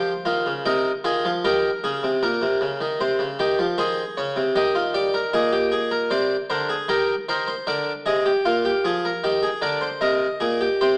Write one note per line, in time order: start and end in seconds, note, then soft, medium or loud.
0.00 0.11 F3 medium
0.00 0.11 G4 medium
0.00 0.63 C5 medium
0.25 0.45 D#3 medium
0.25 0.50 F4 medium
0.46 0.65 C#3 medium
0.66 0.90 C3 medium
0.66 0.90 D#4 medium
0.66 0.90 A#4 medium
1.04 1.24 D#3 medium
1.04 1.29 F4 medium
1.04 1.29 G#4 medium
1.25 1.44 F3 medium
1.45 1.69 D#3 medium
1.45 1.69 G4 medium
1.45 2.22 A#4 medium
1.84 2.03 C#3 medium
1.84 2.08 G#4 medium
2.03 2.22 C3 medium
2.23 2.42 A#2 medium
2.23 2.98 A#4 medium
2.42 2.61 C3 medium
2.61 2.80 C#3 medium
2.81 3.00 D#3 medium
3.01 3.19 C3 medium
3.01 3.25 C5 medium
3.19 3.38 C#3 medium
3.39 3.58 D#3 medium
3.39 3.64 G4 medium
3.59 3.78 F3 medium
3.78 4.02 D#3 medium
3.78 4.53 G#4 medium
3.78 4.02 C5 medium
4.17 4.36 C#3 medium
4.17 4.41 C#5 medium
4.36 4.55 C3 medium
4.56 5.31 D#3 medium
4.56 4.74 G4 medium
4.56 4.80 D#5 medium
4.75 4.94 F4 medium
4.94 5.13 G4 medium
4.94 5.18 D5 medium
5.14 5.33 A#4 medium
5.33 6.08 A#2 medium
5.33 5.52 G#4 medium
5.33 6.08 D#5 medium
5.53 5.71 G4 medium
5.72 5.90 G#4 medium
5.91 6.10 A#4 medium
6.11 6.35 C3 medium
6.11 6.35 C5 medium
6.11 6.35 D5 medium
6.50 6.74 D3 medium
6.50 6.69 A#4 medium
6.50 6.74 C5 medium
6.69 6.88 G#4 medium
6.89 7.13 D#3 medium
6.89 7.13 G4 medium
6.89 7.13 A#4 medium
7.29 7.52 D#3 medium
7.29 7.47 A#4 medium
7.29 7.46 C5 medium
7.47 7.66 C5 medium
7.67 7.91 D3 medium
7.67 7.91 A#4 medium
7.67 7.91 D5 medium
8.06 8.30 C3 medium
8.06 8.24 G#4 medium
8.06 8.30 D#5 medium
8.26 8.44 G4 medium
8.45 8.70 A#2 medium
8.45 8.64 F4 medium
8.45 9.21 F5 medium
8.65 8.84 G4 medium
8.85 9.09 F3 medium
8.85 9.03 G#4 medium
9.05 9.23 A#4 medium
9.24 9.48 D#3 medium
9.24 9.43 G4 medium
9.24 9.48 G5 medium
9.43 9.62 G#4 medium
9.62 9.86 D3 medium
9.62 9.81 A#4 medium
9.62 9.86 D5 medium
9.81 10.01 C5 medium
10.01 10.26 C3 medium
10.01 10.26 A#4 medium
10.01 10.78 D#5 medium
10.40 10.65 A#2 medium
10.40 10.60 G#4 medium
10.61 10.80 G4 medium
10.81 10.98 C3 medium
10.81 10.98 G4 medium
10.81 10.98 C5 medium